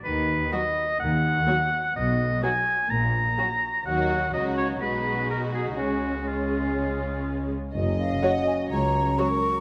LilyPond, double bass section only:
\new Staff \with { instrumentName = "Double bass section" } { \clef bass \time 4/4 \key fis \major \tempo 4 = 125 dis,4 r4 dis,4 r4 | b,,4 r4 ais,,4 r4 | dis,4 cis,4 b,,2 | cis,2.~ cis,8 r8 |
fis,,4 r4 cis,4 r4 | }